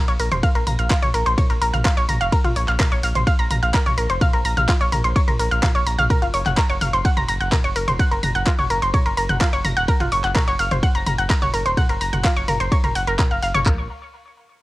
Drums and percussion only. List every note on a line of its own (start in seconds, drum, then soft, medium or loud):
0.08 closed hi-hat medium
0.20 open hi-hat loud
0.32 closed hi-hat medium
0.32 mid tom medium
0.43 kick loud
0.43 closed hi-hat medium
0.43 ride medium
0.55 closed hi-hat medium
0.67 mid tom medium
0.67 open hi-hat loud
0.79 closed hi-hat medium
0.91 kick loud
0.91 clap loud
0.91 closed hi-hat medium
0.91 ride medium
1.03 closed hi-hat medium
1.03 mid tom medium
1.14 open hi-hat loud
1.26 closed hi-hat medium
1.38 kick loud
1.38 closed hi-hat medium
1.38 mid tom medium
1.38 ride medium
1.50 closed hi-hat medium
1.61 open hi-hat loud
1.74 closed hi-hat medium
1.74 mid tom medium
1.85 kick loud
1.85 clap loud
1.85 closed hi-hat medium
1.85 ride medium
1.97 closed hi-hat medium
2.09 mid tom medium
2.09 open hi-hat loud
2.21 closed hi-hat medium
2.32 kick loud
2.32 closed hi-hat medium
2.32 ride medium
2.44 closed hi-hat medium
2.44 mid tom medium
2.56 open hi-hat loud
2.68 clap soft
2.68 closed hi-hat medium
2.80 kick loud
2.80 clap loud
2.80 closed hi-hat medium
2.80 mid tom medium
2.80 ride medium
2.92 closed hi-hat medium
3.03 open hi-hat loud
3.15 closed hi-hat medium
3.15 mid tom medium
3.27 kick loud
3.27 closed hi-hat medium
3.27 ride medium
3.39 closed hi-hat medium
3.50 mid tom loud
3.50 open hi-hat loud
3.63 closed hi-hat medium
3.74 kick loud
3.74 clap loud
3.74 closed hi-hat medium
3.74 ride medium
3.86 closed hi-hat medium
3.86 mid tom medium
3.98 open hi-hat loud
4.10 closed hi-hat medium
4.21 kick loud
4.21 closed hi-hat medium
4.21 mid tom loud
4.21 ride medium
4.33 closed hi-hat medium
4.45 open hi-hat loud
4.57 closed hi-hat medium
4.57 mid tom medium
4.69 kick loud
4.69 clap loud
4.69 closed hi-hat medium
4.69 ride medium
4.81 closed hi-hat medium
4.92 mid tom medium
4.92 open hi-hat loud
5.04 closed hi-hat medium
5.16 kick loud
5.16 closed hi-hat medium
5.16 ride medium
5.28 closed hi-hat medium
5.28 mid tom medium
5.40 open hi-hat loud
5.52 closed hi-hat medium
5.63 kick loud
5.63 clap loud
5.63 closed hi-hat medium
5.63 mid tom loud
5.63 ride medium
5.75 closed hi-hat medium
5.87 open hi-hat loud
5.99 closed hi-hat medium
5.99 mid tom loud
6.10 kick loud
6.10 closed hi-hat medium
6.10 mid tom loud
6.10 ride medium
6.22 closed hi-hat medium
6.34 open hi-hat loud
6.46 clap soft
6.46 closed hi-hat medium
6.46 mid tom medium
6.58 kick loud
6.58 clap loud
6.58 closed hi-hat medium
6.58 ride medium
6.70 closed hi-hat medium
6.81 mid tom loud
6.81 open hi-hat loud
6.93 closed hi-hat medium
7.05 kick loud
7.05 closed hi-hat medium
7.05 ride medium
7.17 closed hi-hat medium
7.17 mid tom medium
7.28 open hi-hat loud
7.40 closed hi-hat medium
7.52 kick loud
7.52 clap loud
7.52 closed hi-hat medium
7.52 mid tom loud
7.52 ride medium
7.64 closed hi-hat medium
7.76 open hi-hat loud
7.88 closed hi-hat medium
7.88 mid tom loud
7.99 kick loud
7.99 closed hi-hat medium
7.99 ride medium
8.11 closed hi-hat medium
8.23 mid tom loud
8.23 open hi-hat loud
8.35 closed hi-hat medium
8.47 kick loud
8.47 clap loud
8.47 closed hi-hat medium
8.47 ride medium
8.59 closed hi-hat medium
8.59 mid tom loud
8.70 open hi-hat loud
8.82 closed hi-hat medium
8.94 kick loud
8.94 closed hi-hat medium
8.94 mid tom medium
8.94 ride medium
9.06 closed hi-hat medium
9.17 open hi-hat loud
9.29 closed hi-hat medium
9.29 mid tom loud
9.41 kick loud
9.41 clap loud
9.41 closed hi-hat medium
9.41 ride medium
9.53 closed hi-hat medium
9.65 mid tom loud
9.65 open hi-hat loud
9.77 closed hi-hat medium
9.88 kick loud
9.88 closed hi-hat medium
9.88 ride medium
10.00 closed hi-hat medium
10.00 mid tom loud
10.12 open hi-hat loud
10.24 clap soft
10.24 closed hi-hat medium
10.36 kick loud
10.36 clap loud
10.36 closed hi-hat medium
10.36 mid tom loud
10.36 ride medium
10.48 closed hi-hat medium
10.59 open hi-hat loud
10.71 closed hi-hat medium
10.71 mid tom loud
10.83 kick loud
10.83 closed hi-hat medium
10.83 ride medium
10.95 closed hi-hat medium
11.06 mid tom loud
11.06 open hi-hat loud
11.18 closed hi-hat medium
11.30 kick loud
11.30 clap loud
11.30 closed hi-hat medium
11.30 ride medium
11.42 closed hi-hat medium
11.42 mid tom loud
11.54 open hi-hat loud
11.66 closed hi-hat medium
11.77 kick loud
11.77 closed hi-hat medium
11.77 mid tom loud
11.77 ride medium
11.89 closed hi-hat medium
12.01 open hi-hat loud
12.13 closed hi-hat medium
12.13 mid tom medium
12.25 kick loud
12.25 clap loud
12.25 closed hi-hat medium
12.25 ride medium
12.37 closed hi-hat medium
12.48 mid tom medium
12.48 open hi-hat loud
12.60 closed hi-hat medium
12.72 kick loud
12.72 closed hi-hat medium
12.72 ride medium
12.84 closed hi-hat medium
12.84 mid tom medium
12.95 open hi-hat loud
13.07 closed hi-hat medium
13.19 kick loud
13.19 clap loud
13.19 closed hi-hat medium
13.19 mid tom medium
13.19 ride medium
13.31 closed hi-hat medium
13.43 open hi-hat loud
13.55 closed hi-hat medium
13.55 mid tom loud
13.66 kick loud
13.66 clap medium
13.66 floor tom loud